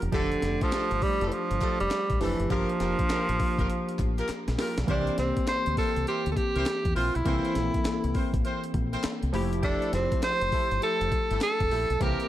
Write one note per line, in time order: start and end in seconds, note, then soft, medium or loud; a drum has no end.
0.02 0.10 E1 loud
0.02 closed hi-hat medium
0.12 0.64 D3 loud
0.12 2.16 F3 medium
0.12 2.17 A3 medium
0.12 0.30 A3 loud
0.12 0.30 D4 medium
0.12 2.17 D4 medium
0.12 0.30 G4 medium
0.12 2.17 G4 medium
0.12 0.30 A4 loud
0.12 kick loud
0.12 closed hi-hat medium
0.32 closed hi-hat medium
0.42 0.56 F1 loud
0.42 snare medium
0.42 closed hi-hat medium
0.61 1.04 F3 loud
0.61 0.71 A3 medium
0.61 0.71 D4 medium
0.61 0.71 G4 medium
0.61 0.71 A4 medium
0.61 kick medium
0.61 closed hi-hat medium
0.72 0.90 A3 medium
0.72 0.90 D4 medium
0.72 0.90 G4 medium
0.72 0.90 A4 medium
0.72 snare loud
0.72 clap medium
0.72 closed hi-hat medium
0.91 0.99 G1 medium
0.91 closed hi-hat medium
1.02 1.30 G3 loud
1.02 kick loud
1.02 open hi-hat medium
1.21 1.29 F1 medium
1.21 1.31 A3 medium
1.21 1.31 D4 medium
1.21 1.31 G4 medium
1.21 1.31 A4 medium
1.21 closed hi-hat medium
1.28 1.34 E3 medium
1.28 closed hi-hat medium
1.33 1.80 F3 loud
1.51 1.58 G1 loud
1.51 closed hi-hat medium
1.61 1.79 A3 medium
1.61 1.79 D4 medium
1.61 1.79 G4 medium
1.61 1.79 A4 medium
1.61 kick medium
1.61 clap medium
1.61 closed hi-hat medium
1.80 1.88 F1 medium
1.80 2.23 G3 loud
1.80 closed hi-hat medium
1.91 snare loud
1.91 clap medium
1.91 closed hi-hat medium
2.10 2.18 A1 medium
2.10 kick medium
2.10 closed hi-hat medium
2.20 2.34 F1 medium
2.20 2.51 E3 loud
2.20 2.48 F3 soft
2.20 2.50 A3 soft
2.20 2.38 A3 medium
2.20 2.38 D4 medium
2.20 2.50 D4 soft
2.20 2.38 G4 medium
2.20 2.51 G4 medium
2.20 2.38 A4 medium
2.20 open hi-hat medium
2.40 2.47 F#1 medium
2.40 closed hi-hat medium
2.49 2.64 G1 loud
2.49 4.84 F3 medium
2.49 4.25 F3 loud
2.49 4.84 A#3 medium
2.49 2.68 A#3 loud
2.49 4.84 D4 medium
2.49 2.68 F4 loud
2.49 2.68 G4 medium
2.49 4.85 G4 medium
2.49 2.68 A#4 loud
2.49 kick loud
2.49 closed hi-hat medium
2.69 closed hi-hat soft
2.80 2.94 F1 medium
2.80 2.98 A#3 medium
2.80 2.98 F4 medium
2.80 2.98 G4 medium
2.80 2.98 A#4 medium
2.80 snare medium
2.80 closed hi-hat medium
2.99 kick loud
2.99 closed hi-hat medium
3.10 3.27 A#3 medium
3.10 3.27 F4 medium
3.10 3.27 G4 medium
3.10 3.27 A#4 medium
3.10 muted fingered electric bass stroke medium
3.10 snare loud
3.10 clap medium
3.10 closed hi-hat medium
3.29 3.37 A1 medium
3.29 closed hi-hat medium
3.40 kick loud
3.40 open hi-hat medium
3.58 3.66 G1 medium
3.58 3.68 A#3 medium
3.58 3.68 F4 medium
3.58 3.68 G4 medium
3.58 3.68 A#4 medium
3.58 kick loud
3.58 closed hi-hat medium
3.70 closed hi-hat medium
3.89 closed hi-hat medium
3.99 4.20 A1 loud
3.99 kick medium
3.99 clap medium
3.99 closed hi-hat medium
4.18 4.28 A#3 medium
4.18 4.27 F4 medium
4.18 4.28 G4 medium
4.18 4.28 A#4 medium
4.18 closed hi-hat medium
4.28 muted fingered electric bass stroke soft
4.28 snare medium
4.28 clap medium
4.28 closed hi-hat medium
4.48 4.55 A#1 medium
4.48 snare medium
4.48 closed hi-hat soft
4.58 4.76 A#3 medium
4.58 4.76 F4 medium
4.58 4.76 G4 medium
4.58 4.76 A#4 medium
4.58 snare loud
4.58 open hi-hat medium
4.78 4.85 B1 medium
4.78 snare medium
4.78 closed hi-hat medium
4.87 5.09 C2 loud
4.87 7.21 E3 medium
4.87 7.21 A#3 medium
4.87 5.16 C4 loud
4.87 7.22 C4 medium
4.87 5.17 D4 medium
4.87 5.16 E4 medium
4.87 7.22 G4 medium
4.87 5.16 A#4 medium
4.87 5.16 C5 loud
4.87 kick loud
4.87 closed hi-hat medium
5.07 closed hi-hat soft
5.18 5.32 C2 loud
5.18 5.46 C4 medium
5.18 snare medium
5.18 closed hi-hat medium
5.37 kick medium
5.37 closed hi-hat medium
5.47 5.76 C5 loud
5.47 snare loud
5.47 clap medium
5.47 closed hi-hat medium
5.66 5.74 D2 medium
5.66 closed hi-hat medium
5.77 5.95 C4 medium
5.77 5.94 E4 medium
5.77 6.05 A4 loud
5.77 5.95 A#4 medium
5.77 5.95 C5 medium
5.77 kick medium
5.77 open hi-hat medium
5.96 6.04 C2 medium
5.96 closed hi-hat medium
6.07 6.24 C4 medium
6.07 6.24 E4 medium
6.07 6.30 G4 medium
6.07 6.24 A#4 medium
6.07 6.24 C5 medium
6.07 closed hi-hat medium
6.26 6.34 D2 medium
6.26 closed hi-hat medium
6.32 6.38 A4 medium
6.37 6.96 G4 loud
6.37 kick medium
6.37 closed hi-hat medium
6.55 6.63 C2 medium
6.55 6.66 C4 medium
6.55 6.65 E4 medium
6.55 6.65 A#4 medium
6.55 6.66 C5 medium
6.55 closed hi-hat medium
6.66 snare loud
6.66 clap medium
6.66 closed hi-hat medium
6.85 6.93 E2 loud
6.85 kick medium
6.85 closed hi-hat soft
6.96 7.10 A#1 medium
6.96 7.13 C4 medium
6.96 7.13 E4 medium
6.96 7.17 F4 loud
6.96 7.13 A#4 medium
6.96 7.13 C5 medium
6.96 open hi-hat medium
7.15 7.23 B1 medium
7.15 8.34 E4 medium
7.15 closed hi-hat medium
7.25 7.39 C2 loud
7.25 9.29 E3 medium
7.25 9.30 A#3 medium
7.25 7.54 C4 medium
7.25 9.30 C4 medium
7.25 7.54 E4 loud
7.25 9.30 A4 medium
7.25 7.54 A#4 medium
7.25 7.54 C5 loud
7.25 kick loud
7.25 closed hi-hat medium
7.45 closed hi-hat medium
7.55 7.69 A#1 medium
7.55 snare medium
7.55 closed hi-hat medium
7.74 kick medium
7.74 closed hi-hat medium
7.85 muted fingered electric bass stroke medium
7.85 snare loud
7.85 clap medium
7.85 closed hi-hat medium
8.04 8.12 C2 loud
8.04 closed hi-hat medium
8.14 8.32 C4 medium
8.14 8.32 E4 medium
8.14 8.32 A#4 medium
8.14 8.32 C5 medium
8.14 kick loud
8.14 open hi-hat medium
8.34 8.41 A1 medium
8.34 kick loud
8.34 closed hi-hat medium
8.44 8.62 C4 medium
8.44 8.62 E4 medium
8.44 8.62 A#4 medium
8.44 8.62 C5 medium
8.44 closed hi-hat medium
8.64 closed hi-hat medium
8.74 8.95 A#1 medium
8.74 kick medium
8.74 closed hi-hat soft
8.93 9.03 C4 medium
8.93 9.03 E4 medium
8.93 9.03 A#4 medium
8.93 9.03 C5 medium
8.93 closed hi-hat medium
9.03 muted fingered electric bass stroke soft
9.03 snare loud
9.03 clap medium
9.03 closed hi-hat medium
9.23 9.31 C2 medium
9.23 closed hi-hat soft
9.33 9.76 F1 loud
9.33 11.67 F3 medium
9.33 11.67 A3 medium
9.33 11.68 E4 medium
9.33 11.68 G4 medium
9.33 open hi-hat medium
9.53 closed hi-hat medium
9.63 9.91 A3 medium
9.63 9.91 D4 medium
9.63 9.91 E4 loud
9.63 9.91 G4 medium
9.63 9.91 A4 loud
9.63 kick loud
9.63 closed hi-hat medium
9.82 closed hi-hat soft
9.93 10.07 F1 loud
9.93 10.21 C4 medium
9.93 snare medium
9.93 closed hi-hat medium
10.12 kick medium
10.12 closed hi-hat medium
10.23 10.79 C5 loud
10.23 snare loud
10.23 clap medium
10.23 closed hi-hat medium
10.41 10.49 F1 medium
10.41 closed hi-hat medium
10.52 10.70 A3 medium
10.52 10.70 E4 medium
10.52 10.70 G4 medium
10.52 10.70 A4 medium
10.52 kick medium
10.52 open hi-hat medium
10.71 10.79 G1 medium
10.71 closed hi-hat soft
10.82 10.99 A3 medium
10.82 10.99 E4 medium
10.82 10.99 G4 medium
10.82 10.99 A4 medium
10.82 11.38 A4 loud
10.82 closed hi-hat medium
11.01 11.09 F1 medium
11.01 closed hi-hat medium
11.12 kick medium
11.12 closed hi-hat medium
11.31 11.38 G1 medium
11.31 11.41 A3 medium
11.31 11.40 E4 medium
11.31 11.41 G4 medium
11.31 11.41 A4 medium
11.31 closed hi-hat medium
11.41 12.04 A4 loud
11.41 snare loud
11.41 clap medium
11.41 closed hi-hat medium
11.60 11.68 F1 medium
11.60 kick medium
11.60 closed hi-hat soft
11.71 11.85 A#1 medium
11.71 11.89 A3 medium
11.71 11.89 E4 medium
11.71 11.89 G4 medium
11.71 11.89 A4 medium
11.71 open hi-hat medium
11.90 11.98 B1 loud
11.90 closed hi-hat medium
12.00 12.14 C2 loud
12.00 12.28 E3 medium
12.00 12.28 A#3 medium
12.00 12.28 A#3 loud
12.00 12.28 C4 loud
12.00 12.28 C4 medium
12.00 12.28 E4 medium
12.00 12.28 G4 loud
12.00 12.28 G4 medium
12.00 12.28 A#4 loud
12.00 kick loud
12.00 closed hi-hat medium
12.20 closed hi-hat medium